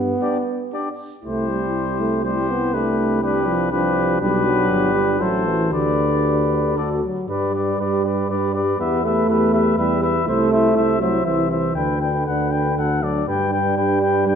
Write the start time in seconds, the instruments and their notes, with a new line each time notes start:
Already playing: bass trombone G2, trombone B3
0.22 french horn D4, trumpet G4 D5
0.73 french horn D4, trumpet G4 D5
1.24 bass trombone C2, trombone A3, french horn E4, trumpet G4 C5
1.50 trombone G3
2.00 trombone A3
2.24 trombone G3, french horn E4, trumpet G4 C5
2.49 trombone B3
2.74 trombone A3, french horn D4, trumpet G4 B4
3.23 trombone G3, french horn D4, trumpet G4 B4
3.47 trombone F3
3.71 trombone F3, french horn D4, trumpet G4 B4
4.21 bass trombone B1, trombone G3, french horn D4, trumpet G4 B4
4.46 trombone F#3
4.71 bass trombone G1
4.95 trombone G3
5.20 bass trombone A1, trombone F#3, french horn E4, trumpet A4 C5
5.46 trombone E3, french horn F#4
5.72 bass trombone D2, trombone D3, french horn G4, trumpet B4 D5
6.77 bass trombone D2, french horn F#4, trumpet A4 D5
7.04 trombone F#3
7.28 bass trombone G2, trombone G3, french horn G4, trumpet B4 D5
7.54 french horn G4, trumpet B4 D5
7.79 bass trombone G2, french horn G4, trumpet B4 D5
8.05 french horn G4, trumpet B4 D5
8.30 bass trombone G2, french horn G4, trumpet B4 D5
8.54 french horn G4, trumpet B4 D5
8.78 bass trombone E2, trombone B3, french horn G4, trumpet B4 E5
9.04 trombone A3, french horn G4, trumpet B4 E5
9.28 bass trombone E2, french horn G4, trumpet B4 E5
9.53 french horn G4, trumpet B4 E5
9.77 bass trombone E2, trombone G3, french horn G4, trumpet B4 E5
10.00 french horn G4, trumpet B4 E5
10.26 bass trombone C2, trombone A3, french horn E4, trumpet C5 E5
10.51 french horn E4, trumpet C5 E5
10.75 bass trombone C2, french horn E4, trumpet C5 E5
11.00 trombone F#3, french horn E4, trumpet C5 E5
11.25 bass trombone C2, trombone E3, french horn E4, trumpet C5 E5
11.50 french horn E4, trumpet C5 E5
11.75 bass trombone D2, trombone D3, french horn D4, trumpet B4 G5
12.00 french horn D4, trumpet B4 G5
12.26 bass trombone D2, french horn D4, trumpet B4 F#5
12.50 french horn D4, trumpet B4 G5
12.76 bass trombone D2, french horn D4, trumpet A4 F#5
13.02 trombone F#3, french horn D4, trumpet A4 D5
13.27 bass trombone G2, trombone G3, french horn D4, trumpet B4 G5
13.51 french horn D4, trumpet B4 G5
13.77 bass trombone G2, french horn D4, trumpet B4 G5
14.01 french horn D4, trumpet B4 G5
14.27 bass trombone G2, french horn D4, trumpet B4 G5